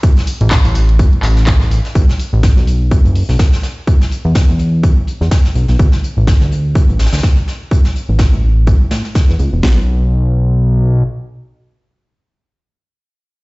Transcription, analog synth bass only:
X:1
M:4/4
L:1/16
Q:"Swing 16ths" 1/4=125
K:Amix
V:1 name="Analog synth bass" clef=bass
z3 A,,,2 A,,,3 E,,, z A,,,4- A,,, z | B,,, z2 A,,,2 B,,,4 F,,,2 B,,, z4 | z3 E,,2 E,,4 z2 E,, z2 B,,, B,,, | D,, z2 A,,,2 D,,4 A,,,2 D,, z4 |
z3 A,,,2 A,,,4 z A,, z2 E,, C,, E,,, | B,,,12 z4 | z16 |]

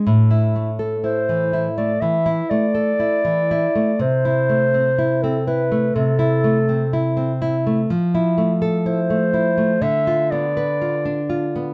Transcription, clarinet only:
X:1
M:4/4
L:1/16
Q:1/4=62
K:Am
V:1 name="Clarinet"
z4 c3 d e2 d6 | c4- c A B2 A6 z2 | z4 c4 e2 d6 |]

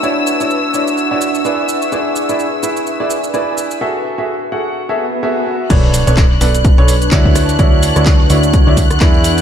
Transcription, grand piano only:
X:1
M:4/4
L:1/16
Q:"Swing 16ths" 1/4=127
K:Bdor
V:1 name="Grand piano"
[EFcd]3 [EFcd] z2 [EFcd]3 [EFcd] z2 [EGBd]4 | [EGBd]3 [EGBd] z2 [EGBe]3 [EGBd] z2 [EGBd]4 | [FGAe]3 [FGAe] z2 [FGAf]3 [FGAe] z2 [FGAe]4 | [DABc]3 [DABc] z2 [DABd]3 [DABc] z2 [EFcd]4 |
[EFcd]3 [EFcd] z2 [EFcd]3 [EFcd] z2 [EGBd]4 |]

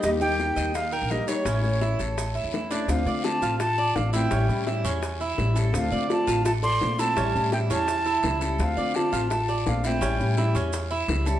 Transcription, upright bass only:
X:1
M:4/4
L:1/16
Q:1/4=168
K:Dm
V:1 name="Upright bass" clef=bass
_E,,6 E,,4- E,, B,,,2 z3 | A,,,6 A,,,4- A,,, E,,2 z3 | D,,2 D,4 A,,,6 A,,,4 | A,,,2 A,,4 E,,6 A,,,4 |
D,,2 D,4 A,,,6 B,,,4 | A,,,2 A,,4 E,,6 ^C,,4 | D,,2 D,4 A,,,6 B,,,4 | A,,,2 A,,4 E,,6 ^C,,4 |]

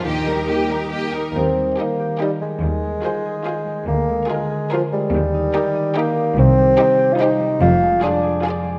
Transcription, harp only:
X:1
M:3/4
L:1/8
Q:1/4=144
K:Eb
V:1 name="Harp"
[E,B] G, B G, B E | E, G, B G B G, | E, A, c A c A, | D, A, B A B A, |
E, E G e G E | [K:Cm] C, G, c G c G, | F,, A, d A d A, |]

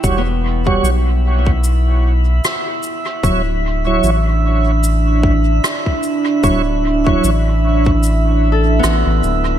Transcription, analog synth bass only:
X:1
M:4/4
L:1/16
Q:"Swing 16ths" 1/4=75
K:D
V:1 name="Analog synth bass" clef=bass
E,,,4 B,,,8 z4 | D,,,4 A,,,8 z4 | D,,,4 A,,,8 A,,, A,,, D,,,2 |]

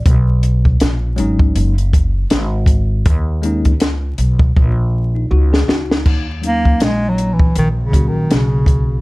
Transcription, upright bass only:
X:1
M:4/4
L:1/8
Q:"Swing 16ths" 1/4=80
K:D#phr
V:1 name="Upright bass" clef=bass
B,,,2 A,,, G,,, F,,,2 G,,,2 | D,,2 C,, B,,, A,,,2 C,, C,, | D,,2 A,,,2 A,,,2 B,,,2 |]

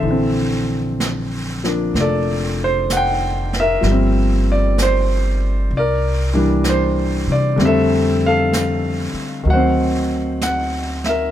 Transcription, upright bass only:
X:1
M:4/4
L:1/8
Q:"Swing" 1/4=64
K:Bblyd
V:1 name="Upright bass" clef=bass
B,,,4 F,,,4 | G,,,4 C,,3 C, | F,,3 z D,,4 |]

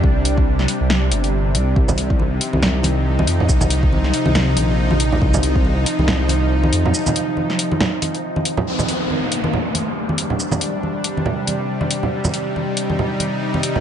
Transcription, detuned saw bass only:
X:1
M:4/4
L:1/16
Q:"Swing 16ths" 1/4=139
K:Cm
V:1 name="Detuned saw bass" clef=bass
C,,6 z C,,3 G,,,4 C,,2 | C,,6 z C,,6- C,, F,,2 | C,,6 z C,,3 B,,,6 | C,,6 z C,,6- C,, F,,2 |
z16 | z16 | z16 | z16 |]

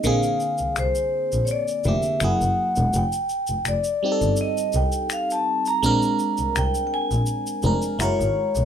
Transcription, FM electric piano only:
X:1
M:4/4
L:1/8
Q:"Swing 16ths" 1/4=83
K:Bbmix
V:1 name="FM electric piano"
[D,B,CA]4 z [D,B,CG] [_G,B,_FA]2 | z3 [G,CEG=A]4 z | [A,CDB]4 z [A,CDB] [A,_F_GB]2 |]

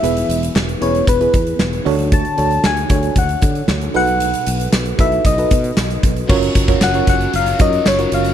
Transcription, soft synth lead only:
X:1
M:4/4
L:1/8
Q:1/4=115
K:Bmix
V:1 name="Soft synth lead"
e2 z c B3 z | a2 g2 f2 z f- | f2 z e d3 z | [K:F#] z2 f f e d c e |]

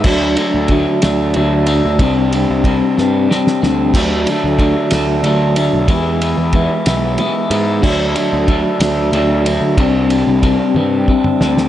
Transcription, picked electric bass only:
X:1
M:6/8
L:1/16
Q:3/8=62
K:Dlyd
V:1 name="Picked electric bass" clef=bass
D,,2 z D,,2 z D,,2 D,,3 D,, | =C,,3 C,,2 z =G,,2 z2 D,,2 | D,,2 z D,,2 z D,,2 D,,3 B,,, | E,,3 E,,2 z B,,,2 z2 G,,2 |
D,,2 z D,,2 z D,,2 D,,3 D,, | =C,,3 C,,2 z =G,,2 z2 D,,2 |]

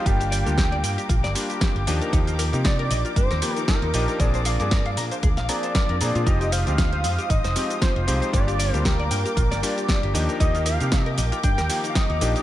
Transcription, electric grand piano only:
X:1
M:4/4
L:1/16
Q:"Swing 16ths" 1/4=116
K:Eb
V:1 name="Electric grand piano"
[G,B,DFG]3 [G,B,DFG]6- [G,B,DFG] [G,B,DFG]4 [F,B,DEG]2 | [F,B,EG]3 [F,B,EG]6- [F,B,EG] [E,F,B,G]4 [F,B,DEG]2 | [F,B,CDA]3 [F,B,CDA]6- [F,B,CDA] [F,B,CDA]4 [F,B,CDA]2 | [F,A,CEG]3 [F,A,CEG]6- [F,A,CEG] [F,A,CEG]4 [F,A,CEG]2 |
[G,B,DFG]3 [G,B,DFG]6- [G,B,DFG] [G,B,DFG]4 [F,B,DEG]2 | [F,B,EG]3 [F,B,EG]6- [F,B,EG] [E,F,B,G]4 [F,B,DEG]2 |]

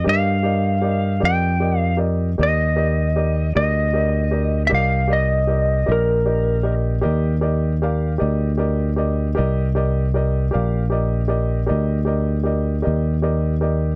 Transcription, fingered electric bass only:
X:1
M:12/8
L:1/8
Q:3/8=52
K:Cm
V:1 name="Fingered electric bass" clef=bass
G,,3 F,,3 E,,3 D,,3 | C,,3 B,,,3 E,,3 D,,3 | C,,3 B,,,3 D,,3 E,,3 |]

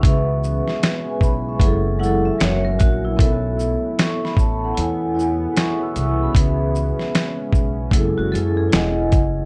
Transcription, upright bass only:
X:1
M:4/4
L:1/16
Q:"Swing 16ths" 1/4=76
K:E
V:1 name="Upright bass" clef=bass
C,,3 z3 B,,,2 F,,,4 F,,,2 ^A,,,2 | B,,,3 z3 A,,,2 E,,4 z2 =C,,2 | C,,3 z3 B,,,2 F,,, F,,, F,,2 E,,,2 F,,,2 |]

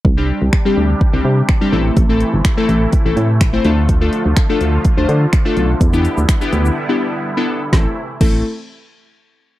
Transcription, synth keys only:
X:1
M:4/4
L:1/16
Q:1/4=125
K:Am
V:1 name="Synth keys"
z [G,CDG]2 z2 [G,CDG]2 z2 [G,CDG]2 z2 [G,CDG] [A,CEA]2 | z [A,CEA]2 z2 [A,CEA]2 z2 [A,CEA]2 z2 [A,CEc] [A,DFA]2 | z [A,DFA]2 z2 [A,DFA]2 z2 [A,DFc]2 z2 [A,DFA]2 z | z [B,DEG]2 z2 [B,DEG]2 z2 [B,DEG]2 z2 [B,DEA]2 z |
[A,CEA] z3 [A,CEA]2 z8 z2 |]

